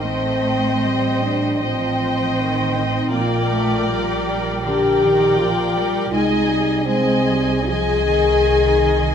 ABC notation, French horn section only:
X:1
M:4/4
L:1/8
Q:1/4=79
K:Gm
V:1 name="French horn section"
C3 D C3 E | F4 G2 F2 | E2 C2 _A4 |]